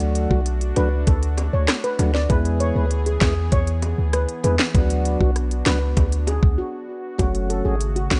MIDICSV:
0, 0, Header, 1, 6, 480
1, 0, Start_track
1, 0, Tempo, 612245
1, 1800, Time_signature, 4, 2, 24, 8
1, 6427, End_track
2, 0, Start_track
2, 0, Title_t, "Steel pan"
2, 0, Program_c, 0, 114
2, 244, Note_on_c, 0, 66, 72
2, 456, Note_off_c, 0, 66, 0
2, 601, Note_on_c, 0, 71, 86
2, 815, Note_off_c, 0, 71, 0
2, 841, Note_on_c, 0, 69, 77
2, 947, Note_off_c, 0, 69, 0
2, 1202, Note_on_c, 0, 73, 74
2, 1308, Note_off_c, 0, 73, 0
2, 1442, Note_on_c, 0, 71, 81
2, 1549, Note_off_c, 0, 71, 0
2, 1681, Note_on_c, 0, 74, 83
2, 1788, Note_off_c, 0, 74, 0
2, 1801, Note_on_c, 0, 71, 96
2, 1907, Note_off_c, 0, 71, 0
2, 2040, Note_on_c, 0, 73, 86
2, 2147, Note_off_c, 0, 73, 0
2, 2163, Note_on_c, 0, 71, 71
2, 2269, Note_off_c, 0, 71, 0
2, 2402, Note_on_c, 0, 68, 72
2, 2508, Note_off_c, 0, 68, 0
2, 2525, Note_on_c, 0, 68, 77
2, 2630, Note_off_c, 0, 68, 0
2, 2763, Note_on_c, 0, 73, 101
2, 3100, Note_off_c, 0, 73, 0
2, 3244, Note_on_c, 0, 71, 77
2, 3349, Note_off_c, 0, 71, 0
2, 3483, Note_on_c, 0, 71, 74
2, 3589, Note_off_c, 0, 71, 0
2, 4084, Note_on_c, 0, 66, 74
2, 4296, Note_off_c, 0, 66, 0
2, 4441, Note_on_c, 0, 71, 86
2, 4655, Note_off_c, 0, 71, 0
2, 4924, Note_on_c, 0, 68, 80
2, 5029, Note_off_c, 0, 68, 0
2, 5160, Note_on_c, 0, 66, 76
2, 5498, Note_off_c, 0, 66, 0
2, 5638, Note_on_c, 0, 66, 99
2, 5746, Note_off_c, 0, 66, 0
2, 5878, Note_on_c, 0, 69, 80
2, 5986, Note_off_c, 0, 69, 0
2, 5997, Note_on_c, 0, 68, 80
2, 6105, Note_off_c, 0, 68, 0
2, 6240, Note_on_c, 0, 66, 74
2, 6347, Note_off_c, 0, 66, 0
2, 6357, Note_on_c, 0, 66, 84
2, 6427, Note_off_c, 0, 66, 0
2, 6427, End_track
3, 0, Start_track
3, 0, Title_t, "Analog synth pad"
3, 0, Program_c, 1, 89
3, 0, Note_on_c, 1, 57, 69
3, 0, Note_on_c, 1, 62, 76
3, 0, Note_on_c, 1, 66, 80
3, 1769, Note_off_c, 1, 66, 0
3, 1770, Note_off_c, 1, 57, 0
3, 1783, Note_off_c, 1, 62, 0
3, 1801, Note_on_c, 1, 59, 72
3, 1802, Note_on_c, 1, 52, 75
3, 1803, Note_on_c, 1, 68, 82
3, 3702, Note_off_c, 1, 52, 0
3, 3703, Note_off_c, 1, 68, 0
3, 3721, Note_on_c, 1, 62, 77
3, 3721, Note_on_c, 1, 66, 84
3, 5609, Note_off_c, 1, 59, 0
3, 5621, Note_off_c, 1, 62, 0
3, 5639, Note_on_c, 1, 49, 77
3, 5640, Note_on_c, 1, 57, 69
3, 6427, Note_off_c, 1, 49, 0
3, 6427, Note_off_c, 1, 57, 0
3, 6427, Note_off_c, 1, 66, 0
3, 6427, End_track
4, 0, Start_track
4, 0, Title_t, "Tonewheel organ"
4, 0, Program_c, 2, 16
4, 0, Note_on_c, 2, 54, 92
4, 0, Note_on_c, 2, 57, 82
4, 0, Note_on_c, 2, 62, 82
4, 0, Note_on_c, 2, 66, 99
4, 321, Note_off_c, 2, 54, 0
4, 322, Note_off_c, 2, 57, 0
4, 322, Note_off_c, 2, 62, 0
4, 323, Note_off_c, 2, 66, 0
4, 598, Note_on_c, 2, 54, 76
4, 598, Note_on_c, 2, 57, 70
4, 601, Note_on_c, 2, 62, 72
4, 602, Note_on_c, 2, 66, 89
4, 697, Note_off_c, 2, 54, 0
4, 698, Note_off_c, 2, 57, 0
4, 699, Note_off_c, 2, 62, 0
4, 700, Note_off_c, 2, 66, 0
4, 1558, Note_on_c, 2, 54, 76
4, 1561, Note_on_c, 2, 57, 70
4, 1561, Note_on_c, 2, 62, 70
4, 1563, Note_on_c, 2, 66, 85
4, 1658, Note_off_c, 2, 54, 0
4, 1659, Note_off_c, 2, 57, 0
4, 1659, Note_off_c, 2, 62, 0
4, 1660, Note_off_c, 2, 66, 0
4, 1797, Note_on_c, 2, 56, 95
4, 1800, Note_on_c, 2, 59, 87
4, 1800, Note_on_c, 2, 64, 80
4, 1803, Note_on_c, 2, 68, 100
4, 2240, Note_off_c, 2, 56, 0
4, 2242, Note_off_c, 2, 59, 0
4, 2242, Note_off_c, 2, 64, 0
4, 2243, Note_off_c, 2, 68, 0
4, 2519, Note_on_c, 2, 56, 79
4, 2520, Note_on_c, 2, 59, 73
4, 2523, Note_on_c, 2, 64, 74
4, 2524, Note_on_c, 2, 68, 90
4, 2618, Note_off_c, 2, 56, 0
4, 2619, Note_off_c, 2, 59, 0
4, 2620, Note_off_c, 2, 64, 0
4, 2620, Note_off_c, 2, 68, 0
4, 3478, Note_on_c, 2, 56, 81
4, 3479, Note_on_c, 2, 59, 74
4, 3480, Note_on_c, 2, 64, 71
4, 3481, Note_on_c, 2, 68, 86
4, 3578, Note_off_c, 2, 56, 0
4, 3578, Note_off_c, 2, 59, 0
4, 3578, Note_off_c, 2, 64, 0
4, 3579, Note_off_c, 2, 68, 0
4, 3719, Note_on_c, 2, 54, 92
4, 3720, Note_on_c, 2, 59, 86
4, 3721, Note_on_c, 2, 62, 82
4, 3722, Note_on_c, 2, 66, 101
4, 4161, Note_off_c, 2, 54, 0
4, 4162, Note_off_c, 2, 59, 0
4, 4162, Note_off_c, 2, 62, 0
4, 4163, Note_off_c, 2, 66, 0
4, 4437, Note_on_c, 2, 54, 76
4, 4439, Note_on_c, 2, 59, 72
4, 4439, Note_on_c, 2, 62, 72
4, 4440, Note_on_c, 2, 66, 88
4, 4537, Note_off_c, 2, 54, 0
4, 4538, Note_off_c, 2, 59, 0
4, 4538, Note_off_c, 2, 62, 0
4, 4539, Note_off_c, 2, 66, 0
4, 5632, Note_on_c, 2, 54, 89
4, 5635, Note_on_c, 2, 57, 84
4, 5636, Note_on_c, 2, 61, 81
4, 5637, Note_on_c, 2, 66, 99
4, 6078, Note_off_c, 2, 54, 0
4, 6079, Note_off_c, 2, 57, 0
4, 6080, Note_off_c, 2, 61, 0
4, 6080, Note_off_c, 2, 66, 0
4, 6354, Note_on_c, 2, 54, 79
4, 6357, Note_on_c, 2, 57, 72
4, 6358, Note_on_c, 2, 61, 73
4, 6360, Note_on_c, 2, 66, 86
4, 6427, Note_off_c, 2, 54, 0
4, 6427, Note_off_c, 2, 57, 0
4, 6427, Note_off_c, 2, 61, 0
4, 6427, Note_off_c, 2, 66, 0
4, 6427, End_track
5, 0, Start_track
5, 0, Title_t, "808-style bass"
5, 0, Program_c, 3, 38
5, 0, Note_on_c, 3, 38, 113
5, 210, Note_off_c, 3, 38, 0
5, 240, Note_on_c, 3, 35, 97
5, 571, Note_off_c, 3, 35, 0
5, 603, Note_on_c, 3, 37, 97
5, 822, Note_off_c, 3, 37, 0
5, 842, Note_on_c, 3, 38, 102
5, 1171, Note_off_c, 3, 38, 0
5, 1204, Note_on_c, 3, 38, 95
5, 1312, Note_off_c, 3, 38, 0
5, 1561, Note_on_c, 3, 38, 98
5, 1781, Note_off_c, 3, 38, 0
5, 1802, Note_on_c, 3, 40, 113
5, 2132, Note_off_c, 3, 40, 0
5, 2160, Note_on_c, 3, 38, 98
5, 2491, Note_off_c, 3, 38, 0
5, 2522, Note_on_c, 3, 40, 98
5, 2741, Note_off_c, 3, 40, 0
5, 2762, Note_on_c, 3, 40, 103
5, 3092, Note_off_c, 3, 40, 0
5, 3123, Note_on_c, 3, 38, 94
5, 3342, Note_off_c, 3, 38, 0
5, 3483, Note_on_c, 3, 40, 99
5, 3592, Note_off_c, 3, 40, 0
5, 3721, Note_on_c, 3, 38, 104
5, 4051, Note_off_c, 3, 38, 0
5, 4082, Note_on_c, 3, 35, 86
5, 4411, Note_off_c, 3, 35, 0
5, 4442, Note_on_c, 3, 37, 94
5, 4661, Note_off_c, 3, 37, 0
5, 4682, Note_on_c, 3, 38, 106
5, 5011, Note_off_c, 3, 38, 0
5, 5039, Note_on_c, 3, 38, 97
5, 5150, Note_off_c, 3, 38, 0
5, 5640, Note_on_c, 3, 30, 107
5, 5970, Note_off_c, 3, 30, 0
5, 6001, Note_on_c, 3, 32, 97
5, 6331, Note_off_c, 3, 32, 0
5, 6361, Note_on_c, 3, 33, 101
5, 6427, Note_off_c, 3, 33, 0
5, 6427, End_track
6, 0, Start_track
6, 0, Title_t, "Drums"
6, 1, Note_on_c, 9, 42, 59
6, 80, Note_off_c, 9, 42, 0
6, 119, Note_on_c, 9, 42, 78
6, 198, Note_off_c, 9, 42, 0
6, 241, Note_on_c, 9, 36, 89
6, 319, Note_off_c, 9, 36, 0
6, 359, Note_on_c, 9, 42, 70
6, 438, Note_off_c, 9, 42, 0
6, 480, Note_on_c, 9, 42, 54
6, 558, Note_off_c, 9, 42, 0
6, 598, Note_on_c, 9, 61, 80
6, 599, Note_on_c, 9, 42, 75
6, 677, Note_off_c, 9, 42, 0
6, 677, Note_off_c, 9, 61, 0
6, 839, Note_on_c, 9, 42, 75
6, 839, Note_on_c, 9, 60, 72
6, 842, Note_on_c, 9, 36, 96
6, 918, Note_off_c, 9, 42, 0
6, 918, Note_off_c, 9, 60, 0
6, 920, Note_off_c, 9, 36, 0
6, 962, Note_on_c, 9, 42, 55
6, 1040, Note_off_c, 9, 42, 0
6, 1078, Note_on_c, 9, 60, 71
6, 1081, Note_on_c, 9, 42, 75
6, 1157, Note_off_c, 9, 60, 0
6, 1159, Note_off_c, 9, 42, 0
6, 1319, Note_on_c, 9, 42, 68
6, 1320, Note_on_c, 9, 37, 97
6, 1320, Note_on_c, 9, 38, 120
6, 1321, Note_on_c, 9, 39, 92
6, 1397, Note_off_c, 9, 42, 0
6, 1398, Note_off_c, 9, 37, 0
6, 1398, Note_off_c, 9, 38, 0
6, 1400, Note_off_c, 9, 39, 0
6, 1443, Note_on_c, 9, 42, 56
6, 1521, Note_off_c, 9, 42, 0
6, 1560, Note_on_c, 9, 61, 80
6, 1561, Note_on_c, 9, 42, 72
6, 1639, Note_off_c, 9, 61, 0
6, 1640, Note_off_c, 9, 42, 0
6, 1683, Note_on_c, 9, 38, 68
6, 1762, Note_off_c, 9, 38, 0
6, 1801, Note_on_c, 9, 42, 76
6, 1801, Note_on_c, 9, 60, 81
6, 1802, Note_on_c, 9, 36, 113
6, 1880, Note_off_c, 9, 36, 0
6, 1880, Note_off_c, 9, 42, 0
6, 1880, Note_off_c, 9, 60, 0
6, 1923, Note_on_c, 9, 42, 57
6, 2001, Note_off_c, 9, 42, 0
6, 2041, Note_on_c, 9, 42, 76
6, 2119, Note_off_c, 9, 42, 0
6, 2279, Note_on_c, 9, 42, 70
6, 2357, Note_off_c, 9, 42, 0
6, 2400, Note_on_c, 9, 42, 52
6, 2479, Note_off_c, 9, 42, 0
6, 2515, Note_on_c, 9, 61, 79
6, 2519, Note_on_c, 9, 38, 117
6, 2519, Note_on_c, 9, 42, 73
6, 2521, Note_on_c, 9, 39, 93
6, 2522, Note_on_c, 9, 36, 95
6, 2593, Note_off_c, 9, 61, 0
6, 2598, Note_off_c, 9, 38, 0
6, 2598, Note_off_c, 9, 42, 0
6, 2599, Note_off_c, 9, 39, 0
6, 2600, Note_off_c, 9, 36, 0
6, 2759, Note_on_c, 9, 42, 78
6, 2759, Note_on_c, 9, 60, 72
6, 2762, Note_on_c, 9, 36, 97
6, 2837, Note_off_c, 9, 42, 0
6, 2838, Note_off_c, 9, 60, 0
6, 2840, Note_off_c, 9, 36, 0
6, 2880, Note_on_c, 9, 42, 56
6, 2958, Note_off_c, 9, 42, 0
6, 2998, Note_on_c, 9, 42, 74
6, 2998, Note_on_c, 9, 60, 72
6, 3076, Note_off_c, 9, 60, 0
6, 3077, Note_off_c, 9, 42, 0
6, 3239, Note_on_c, 9, 42, 70
6, 3240, Note_on_c, 9, 37, 94
6, 3318, Note_off_c, 9, 42, 0
6, 3319, Note_off_c, 9, 37, 0
6, 3360, Note_on_c, 9, 42, 55
6, 3439, Note_off_c, 9, 42, 0
6, 3480, Note_on_c, 9, 61, 78
6, 3481, Note_on_c, 9, 42, 74
6, 3559, Note_off_c, 9, 61, 0
6, 3560, Note_off_c, 9, 42, 0
6, 3601, Note_on_c, 9, 38, 119
6, 3602, Note_on_c, 9, 39, 99
6, 3679, Note_off_c, 9, 38, 0
6, 3681, Note_off_c, 9, 39, 0
6, 3721, Note_on_c, 9, 36, 108
6, 3721, Note_on_c, 9, 42, 72
6, 3723, Note_on_c, 9, 60, 87
6, 3799, Note_off_c, 9, 36, 0
6, 3799, Note_off_c, 9, 42, 0
6, 3802, Note_off_c, 9, 60, 0
6, 3843, Note_on_c, 9, 42, 60
6, 3921, Note_off_c, 9, 42, 0
6, 3962, Note_on_c, 9, 42, 74
6, 4040, Note_off_c, 9, 42, 0
6, 4081, Note_on_c, 9, 36, 94
6, 4160, Note_off_c, 9, 36, 0
6, 4201, Note_on_c, 9, 37, 62
6, 4201, Note_on_c, 9, 42, 70
6, 4280, Note_off_c, 9, 37, 0
6, 4280, Note_off_c, 9, 42, 0
6, 4322, Note_on_c, 9, 42, 52
6, 4400, Note_off_c, 9, 42, 0
6, 4436, Note_on_c, 9, 61, 79
6, 4439, Note_on_c, 9, 38, 116
6, 4439, Note_on_c, 9, 42, 77
6, 4440, Note_on_c, 9, 39, 93
6, 4514, Note_off_c, 9, 61, 0
6, 4517, Note_off_c, 9, 38, 0
6, 4517, Note_off_c, 9, 42, 0
6, 4519, Note_off_c, 9, 39, 0
6, 4679, Note_on_c, 9, 42, 72
6, 4680, Note_on_c, 9, 60, 76
6, 4681, Note_on_c, 9, 36, 94
6, 4757, Note_off_c, 9, 42, 0
6, 4758, Note_off_c, 9, 60, 0
6, 4760, Note_off_c, 9, 36, 0
6, 4801, Note_on_c, 9, 42, 55
6, 4879, Note_off_c, 9, 42, 0
6, 4917, Note_on_c, 9, 60, 74
6, 4920, Note_on_c, 9, 42, 77
6, 4996, Note_off_c, 9, 60, 0
6, 4998, Note_off_c, 9, 42, 0
6, 5039, Note_on_c, 9, 36, 106
6, 5117, Note_off_c, 9, 36, 0
6, 5639, Note_on_c, 9, 42, 73
6, 5640, Note_on_c, 9, 36, 111
6, 5642, Note_on_c, 9, 60, 85
6, 5717, Note_off_c, 9, 42, 0
6, 5719, Note_off_c, 9, 36, 0
6, 5721, Note_off_c, 9, 60, 0
6, 5760, Note_on_c, 9, 42, 57
6, 5839, Note_off_c, 9, 42, 0
6, 5880, Note_on_c, 9, 42, 78
6, 5959, Note_off_c, 9, 42, 0
6, 6120, Note_on_c, 9, 42, 70
6, 6198, Note_off_c, 9, 42, 0
6, 6242, Note_on_c, 9, 42, 51
6, 6320, Note_off_c, 9, 42, 0
6, 6355, Note_on_c, 9, 61, 77
6, 6361, Note_on_c, 9, 38, 111
6, 6361, Note_on_c, 9, 42, 76
6, 6362, Note_on_c, 9, 36, 90
6, 6363, Note_on_c, 9, 39, 92
6, 6427, Note_off_c, 9, 36, 0
6, 6427, Note_off_c, 9, 38, 0
6, 6427, Note_off_c, 9, 39, 0
6, 6427, Note_off_c, 9, 42, 0
6, 6427, Note_off_c, 9, 61, 0
6, 6427, End_track
0, 0, End_of_file